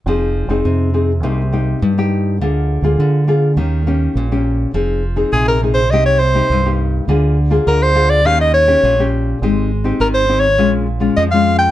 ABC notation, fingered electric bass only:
X:1
M:4/4
L:1/16
Q:1/4=103
K:Fm
V:1 name="Fingered electric bass" clef=bass
F,,,3 F,,, F,,4 C,,4 G,,4 | =D,,3 D,, =D,4 E,,4 B,,,4 | F,,,4 B,,,4 C,,4 C,,4 | =D,,4 D,,4 E,,4 B,,,4 |
A,,,4 A,,,4 B,,,4 F,,4 |]